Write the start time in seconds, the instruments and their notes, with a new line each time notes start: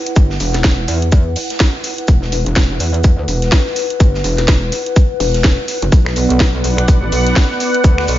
Already playing: ambient pad E4 B4 F#5
0.06 closed hi-hat
0.16 wobble bass G1, kick, closed hi-hat, shaker
0.30 snare
0.40 wobble bass E1, open hi-hat, shaker
0.54 snare, closed hi-hat
0.64 kick, snare, closed hi-hat, shaker
0.88 wobble bass E2, open hi-hat, shaker
1.02 closed hi-hat
1.12 kick, closed hi-hat, shaker
1.36 open hi-hat
1.50 snare, closed hi-hat
1.60 kick, snare, closed hi-hat, shaker
1.84 open hi-hat, shaker
1.98 closed hi-hat
2.08 wobble bass E1, kick, closed hi-hat, shaker
2.22 snare
2.32 open hi-hat, shaker
2.46 wobble bass E1, closed hi-hat
2.56 kick, snare, closed hi-hat, shaker
2.80 wobble bass E2, open hi-hat, shaker
2.94 closed hi-hat
3.04 kick, closed hi-hat, shaker
3.18 wobble bass D2
3.28 wobble bass E1, open hi-hat, shaker
3.42 snare, closed hi-hat
3.52 kick, snare, closed hi-hat, shaker
3.67 snare
3.76 open hi-hat, shaker
3.90 closed hi-hat
4.00 wobble bass G1, kick, closed hi-hat, shaker
4.14 snare
4.24 wobble bass E1, open hi-hat, shaker
4.38 snare, closed hi-hat
4.48 kick, snare, closed hi-hat, shaker
4.72 open hi-hat, shaker
4.86 closed hi-hat
4.96 kick, closed hi-hat, shaker
5.20 wobble bass E1, open hi-hat
5.34 snare, closed hi-hat
5.44 kick, snare, closed hi-hat, shaker
5.68 open hi-hat, shaker
5.82 wobble bass F#1, closed hi-hat
5.92 wobble bass B1, analog synth pad B3 B4 D5 F#5, kick, closed hi-hat, shaker
6.06 finger snap, snare
6.16 open hi-hat, shaker
6.30 wobble bass B1, closed hi-hat
6.40 kick, snare, closed hi-hat, shaker
6.64 wobble bass B1, open hi-hat, shaker
6.78 finger snap, closed hi-hat
6.88 kick, closed hi-hat, shaker
7.02 wobble bass A1
7.12 wobble bass B1, open hi-hat, shaker
7.26 snare, closed hi-hat
7.32 ambient pad B5, kick, snare, closed hi-hat, shaker
7.50 snare
7.60 open hi-hat, shaker
7.74 closed hi-hat
7.84 wobble bass D2, kick, closed hi-hat, shaker
7.98 finger snap, snare
8.08 wobble bass B1, open hi-hat, shaker